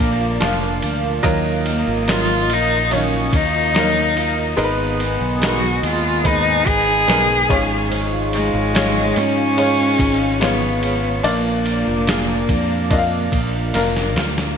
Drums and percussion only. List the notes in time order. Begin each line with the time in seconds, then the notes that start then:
0.41 snare, ride
0.82 ride
1.24 kick, ride
1.66 ride
2.08 snare, ride
2.50 ride
2.91 ride
3.33 kick, ride
3.75 snare, ride
4.17 ride
4.59 ride
5.00 ride
5.42 snare, ride
5.83 ride
6.25 kick, ride
6.66 kick, ride
7.08 snare, ride
7.50 kick, ride
7.92 ride
8.33 ride
8.75 snare, ride
9.16 ride
9.58 ride
9.99 kick, ride
10.41 snare, ride
10.83 ride
11.24 ride
11.66 ride
12.07 snare, ride
12.49 kick, ride
12.91 kick, ride
13.32 kick, ride
13.74 snare, ride
13.97 snare
14.16 snare, ride
14.38 snare